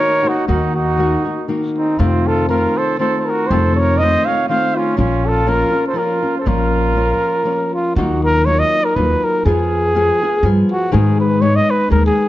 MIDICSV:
0, 0, Header, 1, 5, 480
1, 0, Start_track
1, 0, Key_signature, -5, "minor"
1, 0, Tempo, 504202
1, 452, Time_signature, 3, 2, 24, 8
1, 3334, Tempo, 494234
1, 7664, Key_signature, -6, "minor"
1, 11864, End_track
2, 0, Start_track
2, 0, Title_t, "Trumpet"
2, 0, Program_c, 0, 56
2, 0, Note_on_c, 0, 73, 99
2, 270, Note_on_c, 0, 66, 89
2, 284, Note_off_c, 0, 73, 0
2, 452, Note_off_c, 0, 66, 0
2, 458, Note_on_c, 0, 66, 67
2, 699, Note_off_c, 0, 66, 0
2, 714, Note_on_c, 0, 66, 81
2, 1381, Note_off_c, 0, 66, 0
2, 1692, Note_on_c, 0, 63, 72
2, 1898, Note_on_c, 0, 65, 72
2, 1912, Note_off_c, 0, 63, 0
2, 2163, Note_on_c, 0, 69, 83
2, 2178, Note_off_c, 0, 65, 0
2, 2369, Note_off_c, 0, 69, 0
2, 2375, Note_on_c, 0, 70, 81
2, 2645, Note_on_c, 0, 72, 74
2, 2659, Note_off_c, 0, 70, 0
2, 2837, Note_off_c, 0, 72, 0
2, 2843, Note_on_c, 0, 72, 70
2, 3028, Note_off_c, 0, 72, 0
2, 3028, Note_on_c, 0, 72, 61
2, 3100, Note_on_c, 0, 70, 81
2, 3114, Note_off_c, 0, 72, 0
2, 3304, Note_on_c, 0, 72, 81
2, 3318, Note_off_c, 0, 70, 0
2, 3574, Note_off_c, 0, 72, 0
2, 3580, Note_on_c, 0, 73, 91
2, 3798, Note_on_c, 0, 75, 105
2, 3812, Note_off_c, 0, 73, 0
2, 4063, Note_on_c, 0, 77, 94
2, 4077, Note_off_c, 0, 75, 0
2, 4287, Note_off_c, 0, 77, 0
2, 4294, Note_on_c, 0, 77, 88
2, 4552, Note_on_c, 0, 65, 80
2, 4567, Note_off_c, 0, 77, 0
2, 4765, Note_off_c, 0, 65, 0
2, 4771, Note_on_c, 0, 65, 82
2, 5036, Note_on_c, 0, 69, 93
2, 5050, Note_off_c, 0, 65, 0
2, 5265, Note_on_c, 0, 70, 101
2, 5280, Note_off_c, 0, 69, 0
2, 5625, Note_off_c, 0, 70, 0
2, 5640, Note_on_c, 0, 72, 70
2, 5723, Note_on_c, 0, 70, 76
2, 5738, Note_off_c, 0, 72, 0
2, 6125, Note_off_c, 0, 70, 0
2, 6130, Note_on_c, 0, 72, 51
2, 6227, Note_on_c, 0, 70, 82
2, 6242, Note_off_c, 0, 72, 0
2, 7441, Note_off_c, 0, 70, 0
2, 7447, Note_on_c, 0, 65, 76
2, 7651, Note_off_c, 0, 65, 0
2, 7667, Note_on_c, 0, 66, 67
2, 7912, Note_off_c, 0, 66, 0
2, 7936, Note_on_c, 0, 70, 90
2, 8143, Note_on_c, 0, 73, 98
2, 8158, Note_off_c, 0, 70, 0
2, 8277, Note_on_c, 0, 75, 105
2, 8291, Note_off_c, 0, 73, 0
2, 8524, Note_on_c, 0, 70, 89
2, 8539, Note_off_c, 0, 75, 0
2, 8629, Note_on_c, 0, 71, 89
2, 8644, Note_off_c, 0, 70, 0
2, 8907, Note_on_c, 0, 70, 90
2, 8922, Note_off_c, 0, 71, 0
2, 9112, Note_off_c, 0, 70, 0
2, 9118, Note_on_c, 0, 68, 93
2, 10170, Note_off_c, 0, 68, 0
2, 10335, Note_on_c, 0, 66, 91
2, 10534, Note_off_c, 0, 66, 0
2, 10553, Note_on_c, 0, 68, 78
2, 10791, Note_off_c, 0, 68, 0
2, 10814, Note_on_c, 0, 71, 84
2, 11019, Note_on_c, 0, 73, 95
2, 11034, Note_off_c, 0, 71, 0
2, 11160, Note_on_c, 0, 75, 101
2, 11174, Note_off_c, 0, 73, 0
2, 11301, Note_on_c, 0, 71, 92
2, 11315, Note_off_c, 0, 75, 0
2, 11492, Note_off_c, 0, 71, 0
2, 11498, Note_on_c, 0, 70, 84
2, 11620, Note_off_c, 0, 70, 0
2, 11648, Note_on_c, 0, 68, 79
2, 11864, Note_off_c, 0, 68, 0
2, 11864, End_track
3, 0, Start_track
3, 0, Title_t, "Trumpet"
3, 0, Program_c, 1, 56
3, 0, Note_on_c, 1, 70, 89
3, 267, Note_on_c, 1, 63, 70
3, 281, Note_off_c, 1, 70, 0
3, 444, Note_off_c, 1, 63, 0
3, 450, Note_on_c, 1, 63, 63
3, 694, Note_off_c, 1, 63, 0
3, 727, Note_on_c, 1, 63, 64
3, 1387, Note_off_c, 1, 63, 0
3, 1686, Note_on_c, 1, 60, 54
3, 1895, Note_off_c, 1, 60, 0
3, 1895, Note_on_c, 1, 60, 66
3, 2159, Note_on_c, 1, 65, 71
3, 2173, Note_off_c, 1, 60, 0
3, 2369, Note_off_c, 1, 65, 0
3, 2374, Note_on_c, 1, 65, 72
3, 2638, Note_on_c, 1, 69, 75
3, 2652, Note_off_c, 1, 65, 0
3, 2849, Note_off_c, 1, 69, 0
3, 2855, Note_on_c, 1, 69, 72
3, 3056, Note_off_c, 1, 69, 0
3, 3056, Note_on_c, 1, 69, 50
3, 3143, Note_on_c, 1, 66, 67
3, 3157, Note_off_c, 1, 69, 0
3, 3349, Note_on_c, 1, 69, 76
3, 3364, Note_off_c, 1, 66, 0
3, 3605, Note_off_c, 1, 69, 0
3, 3627, Note_on_c, 1, 70, 72
3, 3853, Note_on_c, 1, 72, 76
3, 3868, Note_off_c, 1, 70, 0
3, 4091, Note_on_c, 1, 73, 83
3, 4106, Note_off_c, 1, 72, 0
3, 4286, Note_off_c, 1, 73, 0
3, 4292, Note_on_c, 1, 72, 70
3, 4574, Note_on_c, 1, 61, 72
3, 4589, Note_off_c, 1, 72, 0
3, 4770, Note_off_c, 1, 61, 0
3, 4776, Note_on_c, 1, 61, 72
3, 5076, Note_on_c, 1, 65, 66
3, 5090, Note_off_c, 1, 61, 0
3, 5287, Note_off_c, 1, 65, 0
3, 5287, Note_on_c, 1, 65, 70
3, 5628, Note_off_c, 1, 65, 0
3, 5634, Note_on_c, 1, 69, 57
3, 5753, Note_on_c, 1, 65, 59
3, 5767, Note_off_c, 1, 69, 0
3, 6146, Note_off_c, 1, 65, 0
3, 6152, Note_on_c, 1, 69, 44
3, 6225, Note_on_c, 1, 65, 75
3, 6240, Note_off_c, 1, 69, 0
3, 7452, Note_off_c, 1, 65, 0
3, 11864, End_track
4, 0, Start_track
4, 0, Title_t, "Nylon-string guitar"
4, 0, Program_c, 2, 24
4, 0, Note_on_c, 2, 51, 51
4, 0, Note_on_c, 2, 58, 55
4, 0, Note_on_c, 2, 63, 58
4, 0, Note_on_c, 2, 66, 54
4, 206, Note_off_c, 2, 66, 0
4, 218, Note_on_c, 2, 66, 51
4, 223, Note_off_c, 2, 58, 0
4, 224, Note_off_c, 2, 63, 0
4, 230, Note_off_c, 2, 51, 0
4, 235, Note_on_c, 2, 58, 38
4, 235, Note_on_c, 2, 63, 39
4, 443, Note_off_c, 2, 66, 0
4, 447, Note_off_c, 2, 58, 0
4, 452, Note_off_c, 2, 63, 0
4, 458, Note_on_c, 2, 58, 66
4, 459, Note_on_c, 2, 51, 68
4, 466, Note_on_c, 2, 63, 67
4, 468, Note_on_c, 2, 66, 68
4, 925, Note_off_c, 2, 51, 0
4, 929, Note_on_c, 2, 51, 59
4, 932, Note_off_c, 2, 58, 0
4, 941, Note_off_c, 2, 66, 0
4, 943, Note_on_c, 2, 58, 59
4, 944, Note_off_c, 2, 63, 0
4, 948, Note_on_c, 2, 63, 62
4, 953, Note_on_c, 2, 66, 65
4, 1175, Note_off_c, 2, 66, 0
4, 1183, Note_off_c, 2, 63, 0
4, 1187, Note_on_c, 2, 66, 38
4, 1194, Note_off_c, 2, 58, 0
4, 1194, Note_on_c, 2, 63, 39
4, 1196, Note_off_c, 2, 51, 0
4, 1206, Note_on_c, 2, 58, 33
4, 1406, Note_off_c, 2, 58, 0
4, 1406, Note_off_c, 2, 63, 0
4, 1411, Note_on_c, 2, 51, 57
4, 1413, Note_off_c, 2, 66, 0
4, 1417, Note_on_c, 2, 58, 62
4, 1417, Note_on_c, 2, 63, 60
4, 1427, Note_on_c, 2, 66, 60
4, 1889, Note_off_c, 2, 51, 0
4, 1892, Note_on_c, 2, 41, 66
4, 1893, Note_on_c, 2, 48, 66
4, 1893, Note_on_c, 2, 51, 67
4, 1894, Note_off_c, 2, 58, 0
4, 1895, Note_off_c, 2, 63, 0
4, 1898, Note_off_c, 2, 66, 0
4, 1898, Note_on_c, 2, 57, 65
4, 1899, Note_on_c, 2, 60, 73
4, 1902, Note_on_c, 2, 65, 72
4, 2356, Note_off_c, 2, 51, 0
4, 2367, Note_off_c, 2, 57, 0
4, 2367, Note_on_c, 2, 51, 63
4, 2371, Note_off_c, 2, 60, 0
4, 2377, Note_off_c, 2, 41, 0
4, 2378, Note_off_c, 2, 48, 0
4, 2378, Note_on_c, 2, 57, 61
4, 2382, Note_on_c, 2, 60, 62
4, 2386, Note_off_c, 2, 65, 0
4, 2389, Note_on_c, 2, 65, 67
4, 2834, Note_off_c, 2, 51, 0
4, 2840, Note_off_c, 2, 60, 0
4, 2842, Note_off_c, 2, 57, 0
4, 2846, Note_on_c, 2, 51, 53
4, 2852, Note_on_c, 2, 60, 53
4, 2853, Note_on_c, 2, 57, 47
4, 2863, Note_off_c, 2, 65, 0
4, 2867, Note_on_c, 2, 65, 53
4, 3325, Note_off_c, 2, 51, 0
4, 3328, Note_off_c, 2, 60, 0
4, 3332, Note_off_c, 2, 57, 0
4, 3332, Note_off_c, 2, 65, 0
4, 3334, Note_on_c, 2, 41, 60
4, 3336, Note_on_c, 2, 65, 72
4, 3337, Note_on_c, 2, 51, 78
4, 3340, Note_on_c, 2, 60, 73
4, 3341, Note_on_c, 2, 48, 69
4, 3342, Note_on_c, 2, 57, 65
4, 3809, Note_off_c, 2, 51, 0
4, 3814, Note_off_c, 2, 41, 0
4, 3817, Note_off_c, 2, 60, 0
4, 3818, Note_off_c, 2, 48, 0
4, 3818, Note_off_c, 2, 57, 0
4, 3820, Note_on_c, 2, 51, 57
4, 3831, Note_on_c, 2, 57, 65
4, 3832, Note_on_c, 2, 60, 61
4, 3839, Note_off_c, 2, 65, 0
4, 3843, Note_on_c, 2, 65, 60
4, 4063, Note_off_c, 2, 65, 0
4, 4069, Note_off_c, 2, 60, 0
4, 4074, Note_off_c, 2, 57, 0
4, 4075, Note_on_c, 2, 65, 46
4, 4078, Note_off_c, 2, 51, 0
4, 4080, Note_on_c, 2, 60, 37
4, 4086, Note_on_c, 2, 57, 37
4, 4090, Note_on_c, 2, 51, 38
4, 4282, Note_off_c, 2, 51, 0
4, 4293, Note_off_c, 2, 65, 0
4, 4294, Note_on_c, 2, 51, 61
4, 4296, Note_off_c, 2, 60, 0
4, 4298, Note_off_c, 2, 57, 0
4, 4308, Note_on_c, 2, 60, 58
4, 4309, Note_on_c, 2, 57, 57
4, 4313, Note_on_c, 2, 65, 64
4, 4756, Note_off_c, 2, 51, 0
4, 4758, Note_on_c, 2, 46, 66
4, 4760, Note_off_c, 2, 57, 0
4, 4760, Note_on_c, 2, 53, 68
4, 4762, Note_off_c, 2, 60, 0
4, 4764, Note_on_c, 2, 58, 69
4, 4766, Note_on_c, 2, 61, 68
4, 4770, Note_off_c, 2, 65, 0
4, 4774, Note_on_c, 2, 65, 63
4, 5232, Note_off_c, 2, 61, 0
4, 5236, Note_off_c, 2, 53, 0
4, 5238, Note_off_c, 2, 46, 0
4, 5239, Note_on_c, 2, 53, 61
4, 5240, Note_off_c, 2, 58, 0
4, 5244, Note_on_c, 2, 58, 68
4, 5244, Note_on_c, 2, 61, 67
4, 5252, Note_off_c, 2, 65, 0
4, 5256, Note_on_c, 2, 65, 70
4, 5476, Note_off_c, 2, 65, 0
4, 5483, Note_off_c, 2, 61, 0
4, 5488, Note_off_c, 2, 58, 0
4, 5488, Note_on_c, 2, 65, 48
4, 5494, Note_on_c, 2, 61, 42
4, 5499, Note_on_c, 2, 58, 36
4, 5503, Note_off_c, 2, 53, 0
4, 5697, Note_on_c, 2, 53, 54
4, 5699, Note_off_c, 2, 61, 0
4, 5701, Note_off_c, 2, 58, 0
4, 5708, Note_off_c, 2, 65, 0
4, 5710, Note_on_c, 2, 61, 56
4, 5712, Note_on_c, 2, 58, 54
4, 5720, Note_on_c, 2, 65, 60
4, 5964, Note_off_c, 2, 65, 0
4, 5973, Note_off_c, 2, 61, 0
4, 5974, Note_off_c, 2, 53, 0
4, 5976, Note_on_c, 2, 65, 43
4, 5981, Note_off_c, 2, 58, 0
4, 5984, Note_on_c, 2, 61, 40
4, 5995, Note_on_c, 2, 58, 34
4, 6196, Note_off_c, 2, 58, 0
4, 6199, Note_off_c, 2, 65, 0
4, 6203, Note_on_c, 2, 46, 61
4, 6204, Note_on_c, 2, 53, 63
4, 6206, Note_off_c, 2, 61, 0
4, 6207, Note_on_c, 2, 58, 75
4, 6210, Note_on_c, 2, 65, 69
4, 6217, Note_on_c, 2, 61, 65
4, 6679, Note_off_c, 2, 53, 0
4, 6683, Note_on_c, 2, 53, 56
4, 6688, Note_off_c, 2, 46, 0
4, 6688, Note_off_c, 2, 61, 0
4, 6690, Note_off_c, 2, 58, 0
4, 6694, Note_on_c, 2, 58, 54
4, 6699, Note_on_c, 2, 61, 61
4, 6706, Note_off_c, 2, 65, 0
4, 6710, Note_on_c, 2, 65, 68
4, 7158, Note_off_c, 2, 58, 0
4, 7165, Note_off_c, 2, 53, 0
4, 7169, Note_off_c, 2, 61, 0
4, 7169, Note_on_c, 2, 53, 53
4, 7169, Note_on_c, 2, 58, 57
4, 7179, Note_off_c, 2, 65, 0
4, 7181, Note_on_c, 2, 61, 51
4, 7183, Note_on_c, 2, 65, 58
4, 7661, Note_off_c, 2, 58, 0
4, 7667, Note_off_c, 2, 61, 0
4, 7673, Note_off_c, 2, 53, 0
4, 7677, Note_on_c, 2, 51, 60
4, 7677, Note_on_c, 2, 54, 59
4, 7681, Note_off_c, 2, 65, 0
4, 7684, Note_on_c, 2, 65, 74
4, 7685, Note_on_c, 2, 58, 83
4, 7688, Note_on_c, 2, 63, 80
4, 8142, Note_off_c, 2, 54, 0
4, 8145, Note_off_c, 2, 58, 0
4, 8149, Note_off_c, 2, 63, 0
4, 8154, Note_on_c, 2, 54, 59
4, 8156, Note_on_c, 2, 58, 71
4, 8157, Note_off_c, 2, 51, 0
4, 8161, Note_on_c, 2, 63, 70
4, 8164, Note_off_c, 2, 65, 0
4, 8168, Note_on_c, 2, 65, 64
4, 8626, Note_off_c, 2, 54, 0
4, 8634, Note_off_c, 2, 58, 0
4, 8638, Note_on_c, 2, 54, 55
4, 8640, Note_off_c, 2, 63, 0
4, 8640, Note_off_c, 2, 65, 0
4, 8646, Note_on_c, 2, 58, 60
4, 8652, Note_on_c, 2, 65, 58
4, 8655, Note_on_c, 2, 63, 55
4, 9117, Note_off_c, 2, 54, 0
4, 9121, Note_off_c, 2, 58, 0
4, 9123, Note_on_c, 2, 53, 69
4, 9124, Note_off_c, 2, 65, 0
4, 9126, Note_off_c, 2, 63, 0
4, 9126, Note_on_c, 2, 59, 83
4, 9130, Note_on_c, 2, 68, 80
4, 9137, Note_on_c, 2, 65, 78
4, 9584, Note_off_c, 2, 53, 0
4, 9593, Note_off_c, 2, 65, 0
4, 9596, Note_on_c, 2, 53, 74
4, 9604, Note_off_c, 2, 59, 0
4, 9604, Note_on_c, 2, 65, 76
4, 9608, Note_off_c, 2, 68, 0
4, 9608, Note_on_c, 2, 59, 71
4, 9612, Note_on_c, 2, 68, 83
4, 9851, Note_off_c, 2, 68, 0
4, 9853, Note_off_c, 2, 53, 0
4, 9857, Note_off_c, 2, 65, 0
4, 9859, Note_off_c, 2, 59, 0
4, 9863, Note_on_c, 2, 68, 50
4, 9872, Note_on_c, 2, 65, 51
4, 9877, Note_on_c, 2, 59, 40
4, 10059, Note_off_c, 2, 59, 0
4, 10071, Note_on_c, 2, 59, 72
4, 10073, Note_on_c, 2, 53, 59
4, 10074, Note_off_c, 2, 68, 0
4, 10075, Note_off_c, 2, 65, 0
4, 10086, Note_on_c, 2, 65, 62
4, 10088, Note_on_c, 2, 68, 72
4, 10529, Note_off_c, 2, 59, 0
4, 10534, Note_off_c, 2, 68, 0
4, 10534, Note_on_c, 2, 44, 76
4, 10536, Note_on_c, 2, 51, 78
4, 10538, Note_off_c, 2, 53, 0
4, 10540, Note_on_c, 2, 59, 73
4, 10541, Note_off_c, 2, 65, 0
4, 10542, Note_on_c, 2, 56, 66
4, 10545, Note_on_c, 2, 63, 77
4, 10545, Note_on_c, 2, 68, 75
4, 11006, Note_off_c, 2, 56, 0
4, 11009, Note_off_c, 2, 59, 0
4, 11013, Note_off_c, 2, 63, 0
4, 11015, Note_off_c, 2, 44, 0
4, 11016, Note_off_c, 2, 51, 0
4, 11018, Note_on_c, 2, 56, 68
4, 11021, Note_off_c, 2, 68, 0
4, 11021, Note_on_c, 2, 59, 69
4, 11024, Note_on_c, 2, 63, 77
4, 11033, Note_on_c, 2, 68, 66
4, 11474, Note_off_c, 2, 56, 0
4, 11476, Note_off_c, 2, 59, 0
4, 11480, Note_off_c, 2, 63, 0
4, 11483, Note_off_c, 2, 68, 0
4, 11486, Note_on_c, 2, 56, 51
4, 11488, Note_on_c, 2, 59, 53
4, 11491, Note_on_c, 2, 63, 52
4, 11495, Note_on_c, 2, 68, 63
4, 11864, Note_off_c, 2, 56, 0
4, 11864, Note_off_c, 2, 59, 0
4, 11864, Note_off_c, 2, 63, 0
4, 11864, Note_off_c, 2, 68, 0
4, 11864, End_track
5, 0, Start_track
5, 0, Title_t, "Upright bass"
5, 0, Program_c, 3, 32
5, 464, Note_on_c, 3, 39, 81
5, 1089, Note_off_c, 3, 39, 0
5, 1899, Note_on_c, 3, 41, 82
5, 2522, Note_off_c, 3, 41, 0
5, 3337, Note_on_c, 3, 41, 76
5, 3959, Note_off_c, 3, 41, 0
5, 4774, Note_on_c, 3, 34, 81
5, 5393, Note_off_c, 3, 34, 0
5, 6213, Note_on_c, 3, 34, 77
5, 6841, Note_off_c, 3, 34, 0
5, 7667, Note_on_c, 3, 39, 89
5, 8297, Note_off_c, 3, 39, 0
5, 8638, Note_on_c, 3, 39, 74
5, 8808, Note_off_c, 3, 39, 0
5, 9115, Note_on_c, 3, 41, 81
5, 9734, Note_off_c, 3, 41, 0
5, 10061, Note_on_c, 3, 43, 86
5, 10233, Note_off_c, 3, 43, 0
5, 10557, Note_on_c, 3, 44, 80
5, 11172, Note_off_c, 3, 44, 0
5, 11504, Note_on_c, 3, 39, 82
5, 11672, Note_off_c, 3, 39, 0
5, 11864, End_track
0, 0, End_of_file